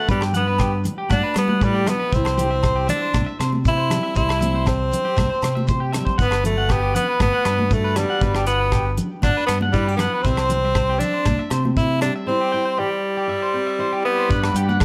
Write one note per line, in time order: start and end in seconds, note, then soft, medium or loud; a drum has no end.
0.08 0.86 G2 medium
0.08 0.55 G2 medium
0.08 0.22 G3 medium
0.08 2.10 B3 medium
0.08 1.36 D4 medium
0.08 0.34 F#4 medium
0.08 0.20 B4 medium
0.08 kick medium
0.08 shekere medium
0.21 0.32 G4 medium
0.21 cross-stick medium
0.21 low agogo medium
0.33 0.83 B3 medium
0.33 2.10 F#4 medium
0.33 0.45 F#5 medium
0.33 closed hi-hat soft
0.33 low conga medium
0.33 shekere medium
0.47 0.58 B4 medium
0.58 1.06 D3 medium
0.58 0.71 G4 medium
0.58 kick medium
0.58 cross-stick medium
0.58 low agogo medium
0.58 shekere medium
0.85 closed hi-hat soft
0.85 low conga medium
0.85 shekere medium
0.98 1.08 G4 medium
1.09 1.21 G2 medium
1.09 1.57 G2 medium
1.09 1.35 D4 medium
1.09 1.21 F#5 medium
1.09 kick medium
1.09 cross-stick medium
1.09 high conga medium
1.09 low agogo medium
1.09 shekere medium
1.23 1.34 B4 medium
1.34 1.94 G3 medium
1.34 1.65 B3 medium
1.34 2.10 D4 medium
1.34 cross-stick medium
1.34 closed hi-hat soft
1.34 low agogo medium
1.34 shekere medium
1.48 1.59 F#5 medium
1.48 high conga medium
1.61 1.87 A2 medium
1.61 1.91 G3 medium
1.61 1.73 B4 medium
1.61 kick medium
1.61 shekere medium
1.75 1.85 G4 medium
1.86 2.13 B2 medium
1.86 2.15 B3 medium
1.86 muted clean electric guitar stroke medium
1.86 cross-stick medium
1.86 closed hi-hat soft
1.86 low conga medium
1.86 low agogo medium
1.86 shekere medium
2.00 2.10 B4 medium
2.12 2.90 C2 medium
2.12 2.59 C3 medium
2.12 2.89 C4 medium
2.12 2.39 E4 medium
2.12 2.23 E5 medium
2.12 muted nylon-string guitar stroke medium
2.12 kick medium
2.12 shekere medium
2.25 2.35 C5 medium
2.25 cross-stick medium
2.25 low agogo medium
2.37 5.69 E4 medium
2.37 2.49 G4 medium
2.37 closed hi-hat soft
2.37 low conga medium
2.37 shekere medium
2.51 2.61 E5 medium
2.63 3.10 E3 medium
2.63 2.74 C5 medium
2.63 kick medium
2.63 cross-stick medium
2.63 low agogo medium
2.63 shekere medium
2.76 2.86 G4 medium
2.88 3.36 D4 medium
2.88 2.99 E5 medium
2.88 closed hi-hat soft
2.88 low conga medium
2.88 shekere medium
3.02 3.12 C5 medium
3.14 3.24 C2 medium
3.14 3.61 G2 medium
3.14 kick medium
3.14 cross-stick medium
3.14 high conga medium
3.14 low agogo medium
3.14 shekere medium
3.26 3.37 E5 medium
3.39 3.98 C3 medium
3.39 3.50 C5 medium
3.39 muted nylon-string guitar stroke medium
3.39 cross-stick medium
3.39 closed hi-hat soft
3.39 low agogo medium
3.39 shekere medium
3.53 high conga medium
3.65 4.12 E3 medium
3.65 4.14 C4 medium
3.65 4.14 E4 loud
3.65 kick medium
3.65 shekere medium
3.78 3.88 C5 medium
3.90 4.17 G3 medium
3.90 cross-stick medium
3.90 closed hi-hat soft
3.90 low conga medium
3.90 low agogo medium
3.90 shekere medium
4.03 4.14 E5 medium
4.15 4.93 C2 medium
4.15 4.63 C3 medium
4.15 5.96 G3 medium
4.15 4.64 E4 medium
4.15 4.27 C5 medium
4.15 muted nylon-string guitar stroke medium
4.15 kick medium
4.15 shekere medium
4.29 4.39 E4 medium
4.29 cross-stick medium
4.29 low agogo medium
4.41 5.44 C4 medium
4.41 4.52 E5 medium
4.41 closed hi-hat soft
4.41 high conga medium
4.41 low conga medium
4.41 shekere medium
4.55 4.65 C5 medium
4.66 5.13 E3 medium
4.66 5.90 C4 medium
4.66 muted clean electric guitar stroke medium
4.66 kick medium
4.66 cross-stick medium
4.66 low agogo medium
4.66 shekere medium
4.92 closed hi-hat soft
4.92 low conga medium
4.92 shekere medium
5.05 5.15 G4 medium
5.17 5.28 C2 medium
5.17 5.64 G2 medium
5.17 5.28 E5 medium
5.17 kick medium
5.17 cross-stick medium
5.17 high conga medium
5.17 low agogo medium
5.17 shekere medium
5.30 5.40 C5 medium
5.42 6.01 C3 medium
5.42 6.17 C4 medium
5.42 cross-stick medium
5.42 closed hi-hat soft
5.42 low agogo medium
5.42 shekere medium
5.55 5.66 E5 medium
5.55 high conga medium
5.67 6.15 E3 medium
5.67 5.79 C5 medium
5.67 muted nylon-string guitar stroke medium
5.67 kick medium
5.67 shekere medium
5.80 5.91 G4 medium
5.92 6.04 E5 medium
5.92 cross-stick medium
5.92 closed hi-hat soft
5.92 low conga medium
5.92 low agogo medium
5.92 shekere medium
5.97 6.19 G3 soft
6.05 6.16 C5 medium
6.05 kick medium
6.18 6.96 G1 medium
6.18 6.65 G2 medium
6.18 7.95 B3 medium
6.18 6.44 B3 medium
6.18 7.45 D4 medium
6.18 6.29 F#5 medium
6.18 muted nylon-string guitar stroke medium
6.18 kick medium
6.18 shekere medium
6.31 6.42 B4 medium
6.31 cross-stick medium
6.31 low agogo medium
6.44 6.73 A3 medium
6.44 7.71 F#4 medium
6.44 closed hi-hat soft
6.44 low conga medium
6.44 shekere medium
6.58 6.68 F#5 medium
6.69 7.16 D3 medium
6.69 6.96 B3 medium
6.69 6.81 G4 medium
6.69 kick medium
6.69 cross-stick medium
6.69 low agogo medium
6.69 shekere medium
6.82 6.93 G4 medium
6.95 7.19 B3 medium
6.95 7.06 F#5 medium
6.95 closed hi-hat soft
6.95 low conga medium
6.95 shekere medium
7.09 7.19 B4 medium
7.20 7.30 G1 medium
7.20 7.66 G2 medium
7.20 7.75 B3 medium
7.20 kick medium
7.20 cross-stick medium
7.20 high conga medium
7.20 low agogo medium
7.20 shekere medium
7.33 7.44 F#5 medium
7.45 8.04 G2 medium
7.45 8.19 D4 medium
7.45 7.57 B4 medium
7.45 cross-stick medium
7.45 closed hi-hat soft
7.45 low agogo medium
7.59 high conga medium
7.71 8.17 D3 medium
7.71 7.99 A3 medium
7.71 8.19 F#4 medium
7.71 kick medium
7.71 shekere medium
7.84 7.94 B4 medium
7.96 8.46 G3 medium
7.96 8.19 B3 medium
7.96 cross-stick medium
7.96 closed hi-hat soft
7.96 low conga medium
7.96 low agogo medium
7.96 shekere medium
8.10 8.20 F#5 medium
8.21 8.99 G1 medium
8.21 8.68 G2 medium
8.21 9.99 B3 medium
8.21 9.48 D4 medium
8.21 8.47 F#4 medium
8.21 8.33 B4 medium
8.21 kick medium
8.21 shekere medium
8.35 8.46 G4 medium
8.35 cross-stick medium
8.35 low agogo medium
8.47 8.94 B3 medium
8.47 9.73 F#4 medium
8.47 8.58 F#5 medium
8.47 closed hi-hat soft
8.47 shekere medium
8.61 8.71 B4 medium
8.72 8.84 G4 medium
8.72 kick medium
8.72 cross-stick medium
8.72 low agogo medium
8.72 shekere medium
8.98 closed hi-hat soft
8.98 low conga medium
8.98 shekere medium
9.22 9.33 G1 medium
9.22 9.69 G2 medium
9.22 9.46 D4 loud
9.22 9.34 F#5 medium
9.22 kick medium
9.22 cross-stick medium
9.22 high conga medium
9.22 low agogo medium
9.22 shekere medium
9.37 9.47 B4 medium
9.47 10.07 G2 medium
9.47 9.59 B3 medium
9.47 10.22 D4 medium
9.47 cross-stick medium
9.47 closed hi-hat soft
9.47 low agogo medium
9.47 shekere medium
9.61 9.72 F#5 medium
9.61 high conga medium
9.73 10.20 D3 medium
9.73 9.96 G3 medium
9.73 9.88 E4 medium
9.73 9.85 B4 medium
9.73 kick medium
9.73 shekere medium
9.87 10.25 F#4 soft
9.87 9.97 G4 medium
9.97 10.24 B3 medium
9.97 10.23 B3 soft
9.97 10.11 F#5 medium
9.97 cross-stick medium
9.97 closed hi-hat soft
9.97 low conga medium
9.97 low agogo medium
9.97 shekere medium
10.14 10.24 B4 medium
10.22 11.02 C2 medium
10.22 10.71 C3 medium
10.22 11.00 C4 loud
10.22 10.36 E5 medium
10.22 kick medium
10.22 shekere medium
10.26 12.04 G3 medium
10.26 11.52 C4 medium
10.26 10.51 E4 medium
10.37 10.49 C5 medium
10.37 cross-stick medium
10.37 low agogo medium
10.49 muted nylon-string guitar stroke medium
10.49 muted clean electric guitar stroke medium
10.49 closed hi-hat soft
10.49 low conga medium
10.49 shekere medium
10.65 10.74 E5 medium
10.75 11.22 E3 medium
10.75 10.87 C5 medium
10.75 kick medium
10.75 cross-stick medium
10.75 low agogo medium
10.75 shekere medium
10.89 10.99 G4 medium
10.99 11.51 D4 medium
10.99 11.12 E5 medium
10.99 closed hi-hat soft
10.99 low conga medium
10.99 shekere medium
11.14 11.24 C5 medium
11.26 11.36 C2 medium
11.26 11.72 G2 medium
11.26 kick medium
11.26 cross-stick medium
11.26 high conga medium
11.26 low agogo medium
11.26 shekere medium
11.39 11.49 E5 medium
11.50 12.09 C3 medium
11.50 11.77 C4 medium
11.50 11.63 C5 medium
11.50 cross-stick medium
11.50 closed hi-hat soft
11.50 low agogo medium
11.50 shekere medium
11.65 high conga medium
11.77 12.23 E3 medium
11.77 12.26 C4 medium
11.77 12.01 E4 loud
11.77 kick medium
11.77 shekere medium
12.01 12.28 G3 medium
12.01 12.13 D4 medium
12.01 cross-stick medium
12.01 closed hi-hat soft
12.01 low agogo medium
12.01 shekere medium
12.16 12.26 E5 medium
12.26 12.73 C3 medium
12.26 14.05 G3 medium
12.26 12.80 C4 medium
12.26 12.53 E4 medium
12.26 12.38 C5 medium
12.26 muted nylon-string guitar stroke medium
12.41 12.51 G4 medium
12.52 13.78 E4 medium
12.52 12.63 G5 medium
12.65 12.76 C5 medium
12.78 13.25 E3 medium
12.78 14.04 G3 medium
12.78 12.89 G4 medium
13.17 13.27 G4 medium
13.28 13.74 G2 medium
13.28 13.40 E5 medium
13.42 13.52 C5 medium
13.54 14.27 C4 medium
13.67 13.77 E5 medium
13.79 14.25 E3 medium
13.79 14.30 E4 medium
13.79 13.91 C5 medium
13.93 14.03 G4 medium
14.05 14.52 G3 medium
14.05 14.52 B3 loud
14.05 14.16 E5 medium
14.18 14.28 C5 medium
14.29 14.85 G2 medium
14.29 14.49 G2 medium
14.29 14.85 B3 medium
14.29 14.57 D4 medium
14.29 14.85 F#4 medium
14.29 14.85 D5 medium
14.29 14.41 F#5 medium
14.29 14.85 F#5 medium
14.29 14.85 B5 medium
14.29 kick medium
14.29 shekere medium
14.43 14.54 B4 medium
14.43 cross-stick medium
14.43 low agogo medium
14.54 14.85 G2 medium
14.54 14.85 D4 medium
14.54 14.67 G4 medium
14.54 closed hi-hat soft
14.54 shekere medium
14.69 14.79 F#5 medium
14.69 high conga medium
14.69 shekere soft
14.80 14.85 D3 medium
14.80 14.85 A3 medium
14.80 kick medium
14.80 cross-stick medium
14.80 low agogo medium
14.80 shekere medium